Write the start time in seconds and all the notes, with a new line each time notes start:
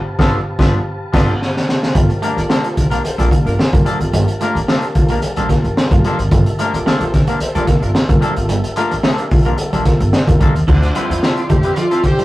Already playing: G4 B4 F5 A5
0.18 G1 F3 A3 B3 D4 F4 A4 B4, kick, snare
0.59 G1 F3 A3 B3 D4 F4 A4 B4, kick, snare
1.13 G1 F3 A3 B3 D4 F4 A4 B4, kick, snare, crash
1.42 snare
1.57 snare
1.69 snare
1.83 snare
1.94 G1 G3 A3 A#3 F4 G4 A#4 F5 A5, kick, closed hi-hat
2.09 muted clean electric guitar stroke, closed hi-hat
2.22 G2 D3 F3 A3 A#3 D4 A#4, closed hi-hat
2.37 A1 A3 A#3 F4 A4 D5, closed hi-hat
2.49 G2 D3 F3 A3 A#3 D4 A4, snare
2.64 A3 A#3 C4 F4 A4 C5, muted clean electric guitar stroke, closed hi-hat
2.77 A#1 F3 A#3 D4 F4 A#4, muted clean electric guitar stroke, kick, closed hi-hat
2.90 F3 A#3 D4 A#4, closed hi-hat
3.04 C4 A4 C5, muted upright bass stroke, muted clean electric guitar stroke, closed hi-hat
3.18 A#1 F3 G3 A3 A#3 D4 F4 A4 D5, closed hi-hat
3.31 G2 D3 A#3, muted clean electric guitar stroke, kick, closed hi-hat
3.45 G1 F3 A3 A#3 D4 F4 A#4, muted clean electric guitar stroke, closed hi-hat
3.58 muted clean electric guitar stroke, snare
3.73 G2 A3 A#3 F4, muted clean electric guitar stroke, kick, closed hi-hat
3.85 G2 D3 F3 G3 A#3 D4 A4, closed hi-hat
4.00 G#1 A3 A#3 F4, muted clean electric guitar stroke, closed hi-hat
4.13 G1 G2 D3 G3, closed hi-hat
4.27 A#3 F4, muted clean electric guitar stroke, closed hi-hat
4.40 F3 A3 A#3 D4 F4 A#4, closed hi-hat
4.55 A1, closed hi-hat
4.68 F3 A3 A#3 D4 A4, snare
4.82 muted clean electric guitar stroke, closed hi-hat
4.95 A#1 A3 A#3 F4, muted clean electric guitar stroke, kick, closed hi-hat
5.08 F3 A#3 D4 A#4, closed hi-hat
5.22 G2 D3, muted clean electric guitar stroke, muted upright bass stroke, closed hi-hat
5.36 A#1 F3 G3 A#3 D4 A4, closed hi-hat
5.49 A3 A#3 F4, muted clean electric guitar stroke, kick, snare, closed hi-hat
5.64 G1 A#3 F4, muted clean electric guitar stroke, closed hi-hat
5.77 G2 D3, muted clean electric guitar stroke, snare
5.91 G2 A3 A#3 F4, muted clean electric guitar stroke, kick, closed hi-hat
6.04 F3 G3 A#3 D4 F4 A4, closed hi-hat
6.19 G#1, muted clean electric guitar stroke, closed hi-hat
6.31 G1 G3 A3 A#3 F4 E5, kick, closed hi-hat
6.46 muted clean electric guitar stroke, closed hi-hat
6.58 G2 D3 F3 A3 A#3 D4 A#4, closed hi-hat
6.73 A1 A3 A#3 F4 A4 D5, closed hi-hat
6.86 G2 D3 F3 A3 A#3 D4 A4, muted upright bass stroke, snare
7.00 A#1 A3 A#3 C4 F4 A4 C5, muted clean electric guitar stroke, closed hi-hat
7.13 F3 D4 A#4, muted clean electric guitar stroke, kick, snare, closed hi-hat
7.27 F3 A#3 D4 A#4, closed hi-hat
7.40 C4 A4 C5, muted upright bass stroke, muted clean electric guitar stroke, closed hi-hat
7.55 A#1 F3 G3 A3 A#3 D4 F4 A4 D5, closed hi-hat
7.67 G2 D3 A#3, muted clean electric guitar stroke, kick, snare, closed hi-hat
7.82 G1 F3 A3 A#3 D4 F4 A#4, muted clean electric guitar stroke, closed hi-hat
7.94 muted clean electric guitar stroke, snare
8.09 G2 A3 A#3 F4, muted clean electric guitar stroke, kick, closed hi-hat
8.21 G2 D3 F3 G3 A#3 D4 A4, closed hi-hat
8.36 G#1 A3 A#3 F4, muted clean electric guitar stroke, closed hi-hat
8.49 G1 G2 D3 G3, closed hi-hat
8.64 A#3 F4, muted clean electric guitar stroke, closed hi-hat
8.76 F3 A3 A#3 D4 F4 A#4, closed hi-hat
8.91 A1, closed hi-hat
9.03 F3 A3 A#3 D4 A4, snare
9.18 muted clean electric guitar stroke, closed hi-hat
9.31 A#1 A3 A#3 F4, muted clean electric guitar stroke, kick, open hi-hat
9.45 F3 A#3 D4 A#4, closed hi-hat
9.58 G2 D3, muted upright bass stroke, muted clean electric guitar stroke, closed hi-hat
9.73 A#1 F3 G3 A#3 D4 A4, closed hi-hat
9.85 A3 A#3 F4, muted clean electric guitar stroke, kick, snare, closed hi-hat
10.00 G1 A#3 F4, muted clean electric guitar stroke, closed hi-hat
10.13 G2 D3, muted clean electric guitar stroke, snare
10.27 F2 A3 A#3 F4, muted clean electric guitar stroke, kick, closed hi-hat
10.40 E2 F3 G3 A#3 D4 F4 A4, kick, closed hi-hat
10.55 D#2, muted clean electric guitar stroke, closed hi-hat
10.67 D2 F3 C4 D4 E4 F4 D5 E5 C6, kick, crash
10.83 A3 F4 D5, closed hi-hat
10.95 D3 F3 G3 C4 E4 F4 B4, closed hi-hat
11.10 F2 F3 A3 C4 E4 F4 C5, muted clean electric guitar stroke, closed hi-hat
11.23 D3 F3 C4 E4 A4, snare
11.36 F3 A3 C4 E4 F4 D5, closed hi-hat
11.49 F2 A3 C4 E4 F4 G4 C5, muted clean electric guitar stroke, kick, closed hi-hat
11.63 F3 C4 E4 B4, closed hi-hat
11.76 F3 A3 F4 D5, muted clean electric guitar stroke, closed hi-hat
11.91 F3 C4 E4 A4, closed hi-hat
12.04 D3 A3 F4 G4 C5, muted clean electric guitar stroke, kick, closed hi-hat
12.19 F3 G3 C4 E4, muted clean electric guitar stroke, closed hi-hat